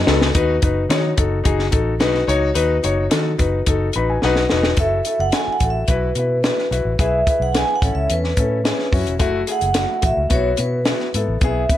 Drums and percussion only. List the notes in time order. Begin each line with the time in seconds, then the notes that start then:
0.07 snare
0.21 snare
0.35 kick, closed hi-hat
0.62 kick, closed hi-hat
0.90 snare, closed hi-hat
1.18 kick, closed hi-hat
1.45 kick, closed hi-hat
1.59 snare
1.72 kick, closed hi-hat
2.00 snare, closed hi-hat
2.14 snare
2.29 closed hi-hat
2.55 closed hi-hat
2.84 closed hi-hat
3.11 snare, closed hi-hat
3.39 kick, closed hi-hat
3.66 kick, closed hi-hat
3.93 closed hi-hat
4.22 snare
4.36 snare
4.50 snare
4.63 snare
4.77 kick, closed hi-hat
5.05 closed hi-hat
5.32 snare, closed hi-hat
5.60 kick, closed hi-hat
5.88 kick, closed hi-hat
6.15 closed hi-hat
6.44 snare, closed hi-hat
6.58 snare
6.72 closed hi-hat
6.99 kick, closed hi-hat
7.27 kick, closed hi-hat
7.55 snare, closed hi-hat
7.82 kick, closed hi-hat
8.10 closed hi-hat
8.24 snare
8.37 kick, closed hi-hat
8.65 snare, closed hi-hat
8.79 snare
8.93 kick, open hi-hat
9.07 closed hi-hat
9.20 kick, closed hi-hat
9.47 closed hi-hat
9.61 closed hi-hat
9.74 snare, closed hi-hat
10.02 kick, closed hi-hat
10.30 kick, closed hi-hat
10.57 closed hi-hat
10.85 snare, closed hi-hat
11.00 snare
11.14 closed hi-hat
11.41 kick, closed hi-hat
11.69 kick, closed hi-hat